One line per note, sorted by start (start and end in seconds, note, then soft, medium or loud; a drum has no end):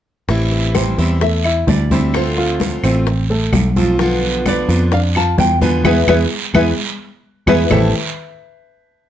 0.28 0.94 A1 medium
0.28 0.74 E3 medium
0.28 0.67 E3 medium
0.28 0.74 G3 medium
0.28 0.74 C4 medium
0.28 0.67 E4 medium
0.28 0.75 E4 medium
0.28 high bongo medium
0.28 high conga soft
0.28 long guiro medium
0.52 high bongo soft
0.52 high conga soft
0.75 0.97 E3 soft
0.75 1.13 G3 medium
0.75 0.98 G3 soft
0.75 0.98 C4 soft
0.75 0.97 E4 soft
0.75 1.13 G4 medium
0.75 1.18 C5 medium
0.75 high bongo medium
0.75 high conga medium
0.75 short guiro medium
0.75 claves medium
0.98 1.64 E2 medium
0.98 1.20 G3 soft
0.98 1.21 C4 medium
0.98 1.21 E4 medium
0.98 high bongo soft
0.98 short guiro medium
1.21 1.40 A3 medium
1.21 1.41 A4 medium
1.21 1.68 E5 medium
1.21 muted steel-string acoustic guitar stroke medium
1.21 high bongo medium
1.21 high conga soft
1.21 long guiro medium
1.44 1.83 E4 medium
1.44 1.83 E5 medium
1.44 high conga soft
1.44 claves medium
1.67 2.77 D2 medium
1.67 2.15 D5 medium
1.67 high bongo soft
1.67 low bongo medium
1.67 high conga medium
1.67 short guiro medium
1.91 2.14 G3 medium
1.91 2.29 C4 medium
1.91 2.14 C4 medium
1.91 2.13 E4 medium
1.91 2.29 C5 medium
1.91 high bongo soft
1.91 high conga medium
1.91 short guiro medium
2.14 2.59 D3 medium
2.14 2.60 A3 medium
2.14 2.60 C4 medium
2.14 2.61 F4 medium
2.14 3.03 C5 medium
2.14 high bongo medium
2.14 high conga soft
2.14 long guiro medium
2.14 claves medium
2.37 2.76 F4 medium
2.37 2.76 F5 medium
2.37 high bongo soft
2.37 high conga soft
2.60 2.82 D3 soft
2.60 2.83 A3 soft
2.60 2.83 C4 soft
2.60 2.82 F4 medium
2.60 high bongo medium
2.60 high conga medium
2.60 short guiro medium
2.83 3.49 A1 medium
2.83 3.06 A3 medium
2.83 3.22 C4 medium
2.83 3.06 C4 medium
2.83 3.06 F4 medium
2.83 3.22 C5 medium
2.83 high bongo soft
2.83 high conga soft
2.83 short guiro medium
2.83 claves medium
3.07 muted steel-string acoustic guitar stroke medium
3.07 high bongo medium
3.07 high conga soft
3.07 long guiro medium
3.30 3.68 A3 medium
3.30 3.68 A4 medium
3.30 high conga soft
3.52 4.62 B1 medium
3.52 high bongo soft
3.52 low bongo medium
3.52 high conga medium
3.52 short guiro medium
3.52 claves medium
3.76 3.95 F3 medium
3.76 3.99 A3 soft
3.76 3.99 C4 medium
3.76 3.95 F4 medium
3.76 3.99 F4 medium
3.76 high bongo soft
3.76 high conga medium
3.76 short guiro medium
3.99 4.45 B2 medium
3.99 4.44 D3 medium
3.99 4.38 F3 medium
3.99 4.45 B3 medium
3.99 4.46 D4 medium
3.99 4.38 F4 medium
3.99 4.46 F4 medium
3.99 high bongo medium
3.99 high conga soft
3.99 long guiro medium
4.23 high bongo soft
4.23 high conga soft
4.45 4.68 D3 soft
4.45 4.84 B3 medium
4.45 4.68 B3 soft
4.45 4.69 D4 medium
4.45 4.68 F4 medium
4.45 4.84 B4 medium
4.45 4.95 D5 medium
4.45 high bongo medium
4.45 high conga medium
4.45 short guiro medium
4.45 claves medium
4.69 5.35 F2 medium
4.69 4.91 D3 soft
4.69 4.91 B3 soft
4.69 4.92 D4 medium
4.69 4.91 F4 medium
4.69 high bongo soft
4.69 short guiro medium
4.92 5.11 D4 medium
4.92 5.11 D5 medium
4.92 5.00 F5 medium
4.92 muted steel-string acoustic guitar stroke medium
4.92 high bongo medium
4.92 high conga soft
4.92 long guiro medium
5.15 5.54 F4 medium
5.15 5.54 F5 medium
5.15 5.38 A5 medium
5.15 high conga soft
5.15 claves medium
5.38 5.81 E2 medium
5.38 5.62 G5 medium
5.38 high bongo soft
5.38 low bongo medium
5.38 high conga medium
5.38 short guiro medium
5.61 5.85 D3 medium
5.61 5.81 B3 medium
5.61 5.84 B3 medium
5.61 5.84 D4 medium
5.61 5.84 F4 medium
5.61 5.81 B4 medium
5.61 5.84 G#5 medium
5.61 high bongo soft
5.61 high conga medium
5.61 short guiro medium
5.84 6.02 E2 medium
5.84 6.00 G#3 loud
5.84 6.00 B3 medium
5.84 6.00 E4 medium
5.84 6.00 G#4 medium
5.84 6.01 B4 medium
5.84 6.00 E5 medium
5.84 6.00 G#5 medium
5.84 low bongo medium
5.84 high conga medium
5.84 long guiro medium
5.84 claves medium
6.07 6.25 E2 medium
6.07 6.23 G#3 medium
6.07 6.23 B3 loud
6.07 6.23 B3 medium
6.07 6.23 E4 medium
6.07 6.24 E4 medium
6.07 6.23 G#4 loud
6.07 6.23 B4 medium
6.07 6.24 E5 medium
6.07 6.24 G#5 medium
6.07 low bongo loud
6.07 high conga medium
6.07 long guiro medium
6.07 claves loud
6.54 6.72 E2 medium
6.54 6.70 G#3 medium
6.54 6.70 B3 medium
6.54 6.70 E4 loud
6.54 6.70 E4 medium
6.54 6.70 G#4 medium
6.54 6.70 B4 medium
6.54 6.70 E5 loud
6.54 6.70 G#5 loud
6.54 low bongo medium
6.54 high conga medium
6.54 long guiro medium
6.54 claves loud
7.47 7.65 E2 medium
7.47 7.63 G#3 medium
7.47 7.63 B3 medium
7.47 7.63 E4 medium
7.47 7.63 G#4 medium
7.47 7.63 B4 medium
7.47 7.63 E5 medium
7.47 7.63 G#5 medium
7.47 low bongo medium
7.47 high conga medium
7.47 long guiro medium
7.47 claves medium
7.70 7.92 A1 medium
7.70 7.89 A2 medium
7.70 7.89 E3 medium
7.70 7.90 G3 medium
7.70 7.92 A3 medium
7.70 7.90 C4 medium
7.70 7.93 E4 medium
7.70 7.90 E4 medium
7.70 7.93 G4 medium
7.70 7.93 A4 medium
7.70 7.93 C5 medium
7.70 7.93 E5 medium
7.70 7.93 A5 medium
7.70 low bongo medium
7.70 low conga medium
7.70 long guiro medium
7.70 claves medium